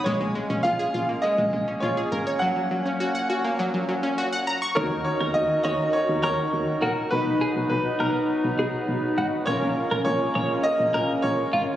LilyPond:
<<
  \new Staff \with { instrumentName = "Grand piano" } { \time 4/4 \key dis \minor \tempo 4 = 102 cis''4 eis''4 dis''4 cis''4 | fis''2. r4 | ais'8 cis''8 dis''8 dis''8 cis''8 cis''4 ais'8 | b'4 b'2~ b'8 r8 |
cis''4 cis''4 dis''4 cis''4 | }
  \new Staff \with { instrumentName = "Clean electric guitar" } { \time 4/4 \key dis \minor r1 | r1 | cis''8 r16 ais'16 r8 cis''8 r8 ais'8 r8 fis'16 r16 | r8 gis'16 r8. ais'8 r8 gis'8 r8 fis'16 r16 |
cis''8 r16 ais'16 r8 cis''8 r8 ais'8 r8 eis'16 r16 | }
  \new Staff \with { instrumentName = "Analog polysynth" } { \time 4/4 \key dis \minor r1 | r1 | <dis' fis' ais'>1 | <dis' fis' b'>1 |
<cis' eis' ais'>1 | }
  \new Staff \with { instrumentName = "Synth pluck" } { \time 4/4 \key dis \minor gis16 gis16 gis16 cis'16 eis'16 gis'16 eis'16 ais16 gis16 gis16 gis16 cis'16 eis'16 gis'16 ais'16 cis''16 | fis16 fis16 fis16 cis'16 fis'16 fis''16 fis'16 ais16 fis16 fis16 fis16 cis'16 fis'16 fis''16 ais''16 cis'''16 | r1 | r1 |
r1 | }
  \new Staff \with { instrumentName = "Woodwind section" } { \time 4/4 \key dis \minor << { <ais cis'>1~ | <ais cis'>1 | <cis' fis'>1 | <b dis'>1 |
<ais cis'>1 | } \\ { gis1 | <ais, fis>1 | dis1 | fis1 |
gis1 | } >> }
  \new Staff \with { instrumentName = "FM bass" } { \clef bass \time 4/4 \key dis \minor ais,,16 ais,,16 r16 ais,,16 ais,,16 r16 ais,,16 r8 ais,,16 ais,,16 r16 ais,,16 r16 gis,,16 r16 | r1 | dis,16 dis,16 r16 dis,16 dis,16 r16 dis,16 r8 dis,16 dis,16 r16 dis,16 r16 ais,,16 r16 | b,,16 b,,16 r16 b,,16 b,,16 r16 b,,16 r8 b,,16 b,,16 r16 b,,16 r16 gis,,16 r16 |
ais,,16 ais,,16 r16 ais,,16 ais,,16 r16 ais,,16 r8 ais,,16 ais,,16 r16 ais,,16 r16 gis,,16 r16 | }
>>